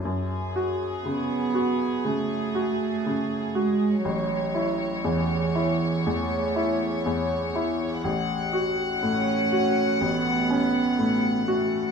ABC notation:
X:1
M:4/4
L:1/8
Q:1/4=60
K:F#m
V:1 name="Violin section"
G8 | c8 | f8 |]
V:2 name="Cello"
z2 B,2 A,3 G, | F,2 E,2 A,3 z | z2 C2 B,3 A, |]
V:3 name="Grand piano" clef=bass
F,, F C, F C, F C, F | A,,, E E,, E E,, E E,, E | A,,, F A,, F A,,, C A,, F |]